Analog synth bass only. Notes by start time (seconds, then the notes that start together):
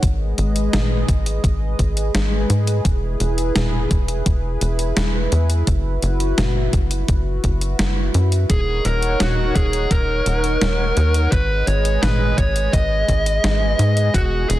0.03 G#1
0.38 G#1
0.73 G#1
1.09 G#1
1.44 G#1
1.79 G#1
2.14 G#1
2.50 G#2
2.85 E1
3.20 E1
3.55 E1
3.91 E1
4.26 E1
4.61 E1
4.97 E1
5.32 E2
5.67 F#1
6.03 F#1
6.38 F#1
6.73 F#1
7.09 F#1
7.44 F#1
7.79 F#1
8.14 F#2
8.50 D#1
8.85 D#1
9.20 D#1
9.56 D#1
9.91 D#1
10.26 D#1
10.62 D#1
10.97 D#2
11.32 G#1
11.67 G#1
12.03 G#1
12.38 G#1
12.73 G#1
13.09 G#1
13.44 G#1
13.79 G#2
14.14 E1
14.50 E1